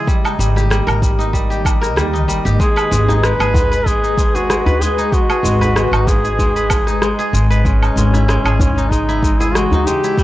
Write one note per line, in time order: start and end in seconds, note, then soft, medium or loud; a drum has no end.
0.00 0.13 G#3 medium
0.00 0.31 E4 medium
0.00 0.13 G#4 medium
0.00 10.14 D#5 medium
0.07 2.58 D#3 medium
0.07 0.38 G3 medium
0.07 2.58 A#3 medium
0.07 2.58 G4 medium
0.07 kick loud
0.07 cabasa soft
0.25 1.18 D#4 medium
0.25 cabasa soft
0.25 low woodblock medium
0.39 0.79 G#1 medium
0.39 0.69 G3 medium
0.39 cabasa medium
0.56 1.50 G4 medium
0.56 cross-stick soft
0.56 cabasa soft
0.70 1.01 G3 medium
0.70 cross-stick loud
0.70 cabasa soft
0.87 1.97 G#1 medium
0.87 1.81 A#4 loud
0.87 cabasa soft
0.87 low woodblock medium
1.02 1.32 G3 medium
1.02 kick loud
1.02 cabasa medium
1.19 2.13 D#4 medium
1.19 cabasa soft
1.33 1.64 G3 medium
1.33 kick medium
1.33 cabasa soft
1.50 2.45 G4 medium
1.50 cabasa soft
1.65 1.95 G3 medium
1.65 kick loud
1.65 cabasa medium
1.65 low woodblock medium
1.81 2.82 A#4 loud
1.81 cross-stick soft
1.81 cabasa soft
1.96 2.28 D#2 medium
1.96 2.27 G3 medium
1.96 cross-stick medium
1.96 cabasa soft
2.13 3.08 D#4 medium
2.13 cabasa soft
2.28 2.40 G#1 medium
2.28 2.65 G3 medium
2.28 cabasa medium
2.45 2.55 G#1 medium
2.45 2.66 G4 medium
2.45 cabasa soft
2.60 2.90 G#3 medium
2.60 10.14 G#3 medium
2.60 7.62 G#4 medium
2.60 3.25 G#4 loud
2.60 7.61 B4 medium
2.60 kick loud
2.60 cabasa soft
2.76 3.71 B4 loud
2.76 cabasa soft
2.76 low woodblock medium
2.91 3.32 G#1 loud
2.91 3.22 G#3 medium
2.91 djembe tone medium
2.91 cabasa medium
3.08 4.03 D#4 medium
3.08 cross-stick soft
3.08 djembe tone medium
3.08 cabasa soft
3.23 3.53 G#3 medium
3.23 3.88 B4 loud
3.23 cross-stick loud
3.23 cabasa soft
3.39 4.57 G#1 medium
3.39 4.34 G#4 medium
3.39 cabasa soft
3.39 low woodblock medium
3.54 3.85 G#3 medium
3.54 kick loud
3.54 djembe slap medium
3.54 djembe tone medium
3.54 djembe bass medium
3.54 cabasa medium
3.72 4.66 B4 loud
3.72 cabasa soft
3.86 4.16 G#3 medium
3.86 4.37 G#4 loud
3.86 kick medium
3.86 cabasa soft
4.04 4.98 D#4 medium
4.04 cabasa soft
4.17 4.48 G#3 medium
4.17 kick medium
4.17 cabasa medium
4.35 4.84 F#4 medium
4.35 5.29 G#4 medium
4.35 djembe slap medium
4.35 cabasa soft
4.50 4.80 G#3 loud
4.50 cross-stick medium
4.50 cabasa soft
4.66 5.61 B4 medium
4.66 djembe bass medium
4.66 cabasa soft
4.81 5.11 G#3 medium
4.81 5.16 G#4 medium
4.81 djembe tone medium
4.81 cabasa medium
4.98 5.92 D#4 medium
4.98 cabasa soft
5.12 5.43 G#3 medium
5.12 6.11 F#4 loud
5.12 kick loud
5.12 cabasa soft
5.30 6.24 G#4 medium
5.30 cabasa soft
5.30 low woodblock medium
5.43 5.84 G#1 medium
5.43 5.74 G#3 medium
5.43 djembe tone medium
5.43 cabasa medium
5.60 6.56 B4 medium
5.60 cross-stick soft
5.60 djembe tone medium
5.60 cabasa soft
5.76 6.07 G#3 medium
5.76 cross-stick medium
5.76 cabasa soft
5.91 7.10 G#1 medium
5.91 6.87 D#4 medium
5.91 cabasa soft
5.91 low woodblock medium
6.07 6.38 G#3 medium
6.07 7.35 G#4 loud
6.07 kick loud
6.07 djembe slap medium
6.07 djembe tone medium
6.07 cabasa medium
6.25 7.18 G#4 medium
6.25 cabasa soft
6.39 6.69 G#3 medium
6.39 kick medium
6.39 djembe tone medium
6.39 cabasa soft
6.56 7.50 B4 loud
6.56 cabasa soft
6.70 7.01 G#3 medium
6.70 kick medium
6.70 djembe slap medium
6.70 cabasa medium
6.70 low woodblock medium
6.87 7.82 D#4 medium
6.87 cross-stick soft
6.87 cabasa soft
7.02 7.33 G#3 medium
7.02 cross-stick medium
7.02 cabasa soft
7.19 8.45 G#4 loud
7.19 cabasa soft
7.33 7.89 G#1 medium
7.33 7.64 G#3 medium
7.33 cabasa medium
7.50 8.73 B4 medium
7.50 cabasa soft
7.65 10.15 C#3 medium
7.65 10.16 E3 medium
7.65 7.96 G#3 medium
7.65 8.92 C#4 loud
7.65 kick loud
7.65 cabasa soft
7.83 8.20 D#4 medium
7.83 cabasa soft
7.83 low woodblock medium
7.96 8.36 G#1 loud
7.96 8.27 G#3 medium
7.96 djembe tone medium
7.96 cabasa medium
8.14 8.84 E4 medium
8.14 cross-stick soft
8.14 djembe tone medium
8.14 cabasa soft
8.28 8.59 G#3 medium
8.28 cross-stick medium
8.28 cabasa soft
8.44 9.63 G#1 medium
8.44 9.40 G#4 loud
8.44 cabasa soft
8.44 low woodblock medium
8.60 8.91 G#3 medium
8.60 kick loud
8.60 djembe slap medium
8.60 djembe tone medium
8.60 djembe bass medium
8.60 cabasa medium
8.78 9.15 D#4 medium
8.78 cabasa soft
8.91 9.23 G#3 medium
8.91 9.42 D#4 loud
8.91 kick medium
8.91 cabasa soft
9.09 9.79 E4 medium
9.09 cabasa soft
9.23 9.54 G#3 medium
9.23 kick loud
9.23 cabasa medium
9.40 9.55 E4 loud
9.40 10.23 G#4 loud
9.40 djembe slap medium
9.40 cabasa soft
9.54 9.86 G#3 medium
9.54 9.87 F#4 loud
9.54 cross-stick medium
9.54 cabasa soft
9.71 10.10 D#4 medium
9.71 djembe bass medium
9.71 cabasa soft
9.86 10.23 G#3 medium
9.86 10.23 G4 loud
9.86 djembe tone medium
9.86 cabasa medium
10.04 10.23 E4 medium
10.04 cabasa soft
10.17 10.23 D#3 medium
10.17 10.23 G3 loud
10.17 10.23 A#3 medium
10.17 10.23 D#4 medium
10.17 10.23 G4 medium
10.17 kick loud
10.17 cabasa soft